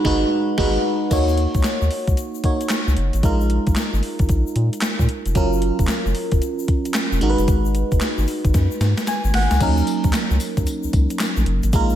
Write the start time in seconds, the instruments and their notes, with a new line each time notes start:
Already playing: fm electric piano G#3 D#4 F#4 B4
0.04 analog synth bass G#1, fm electric piano G#3 D#4 F#4 B4, kick, snare
0.58 analog synth bass G#1, fm electric piano G#3 D#4 F#4 B4, kick, snare, crash
1.11 analog synth bass D#2, fm electric piano A#3 D#4 F#4 C#5, kick, closed hi-hat, crash, shaker
1.28 shaker
1.37 closed hi-hat
1.54 analog synth bass C#2, kick, closed hi-hat, shaker
1.63 snare, clap, closed hi-hat, shaker
1.82 analog synth bass D#2, shaker
1.91 open hi-hat
2.07 analog synth bass C#2, kick, closed hi-hat, shaker
2.17 closed hi-hat, shaker
2.35 shaker
2.44 fm electric piano A#3 D#4 F#4 C#5, kick, closed hi-hat
2.61 closed hi-hat, shaker
2.69 snare, clap, closed hi-hat, shaker
2.87 analog synth bass C#2, shaker
2.97 analog synth bass F#1, closed hi-hat
3.13 analog synth bass G#1, closed hi-hat, shaker
3.23 analog synth bass A#1, fm electric piano G#3 D#4 F4 A#4, kick, closed hi-hat, shaker
3.41 shaker
3.50 closed hi-hat
3.67 analog synth bass A#1, kick, closed hi-hat, shaker
3.76 snare, clap, closed hi-hat, shaker
3.93 analog synth bass G#1, shaker
4.03 open hi-hat
4.19 analog synth bass A#1, kick, closed hi-hat, shaker
4.29 analog synth bass A#1, kick, closed hi-hat, shaker
4.47 shaker
4.56 analog synth bass A#2, closed hi-hat
4.73 closed hi-hat, shaker
4.81 snare, clap, closed hi-hat, shaker
4.99 analog synth bass A#2, kick, shaker
5.09 closed hi-hat
5.26 analog synth bass F1, closed hi-hat, shaker
5.35 analog synth bass F#1, fm electric piano F#3 C#4 F4 A#4, kick, closed hi-hat, shaker
5.53 shaker
5.62 closed hi-hat
5.79 analog synth bass F1, kick, closed hi-hat, shaker
5.87 snare, clap, closed hi-hat, shaker
6.06 analog synth bass F#1, shaker
6.15 open hi-hat
6.32 analog synth bass F1, kick, closed hi-hat, shaker
6.42 closed hi-hat, shaker
6.59 shaker
6.68 kick, closed hi-hat
6.85 closed hi-hat, shaker
6.94 snare, clap, closed hi-hat, shaker
7.12 analog synth bass F1, shaker
7.21 analog synth bass G#1, fm electric piano G#3 D#4 F#4 A#4, closed hi-hat
7.30 fm electric piano B4
7.38 analog synth bass F#1, closed hi-hat, shaker
7.48 analog synth bass G#1, kick, closed hi-hat, shaker
7.65 shaker
7.75 closed hi-hat, shaker
7.92 analog synth bass F#1, kick, closed hi-hat, shaker
8.01 snare, clap, closed hi-hat, shaker
8.18 analog synth bass G#1, shaker
8.27 open hi-hat, shaker
8.45 analog synth bass G#1, kick, closed hi-hat, shaker
8.54 analog synth bass F#2, kick, snare, closed hi-hat, shaker
8.71 shaker
8.80 analog synth bass G#2, snare, closed hi-hat, shaker
8.97 snare, closed hi-hat, shaker
9.07 fm electric piano G#5, snare, closed hi-hat, shaker
9.24 analog synth bass G#1, shaker
9.34 analog synth bass G#1, fm electric piano F#5, snare, open hi-hat
9.51 analog synth bass C#2, snare, closed hi-hat, shaker
9.60 analog synth bass D#2, fm electric piano F#3 A#3 C#4 D#4 A#4, kick, closed hi-hat, crash, tambourine, shaker
9.77 shaker
9.87 closed hi-hat, tambourine
10.04 analog synth bass D#2, kick, closed hi-hat, shaker
10.13 snare, clap, closed hi-hat, tambourine, shaker
10.31 analog synth bass C#2, shaker
10.40 open hi-hat, tambourine, shaker
10.57 analog synth bass D#2, kick, closed hi-hat, shaker
10.66 closed hi-hat, tambourine, shaker
10.83 analog synth bass C#2, shaker
10.93 analog synth bass C#2, kick, closed hi-hat, tambourine
11.10 closed hi-hat, shaker
11.19 snare, clap, closed hi-hat, tambourine, shaker
11.37 analog synth bass A#1, shaker
11.46 analog synth bass F#1, closed hi-hat
11.63 analog synth bass G#1, closed hi-hat, shaker
11.73 analog synth bass A#1, fm electric piano G#3 A#3 D#4 F4 A#4, kick, closed hi-hat, tambourine, shaker
11.89 shaker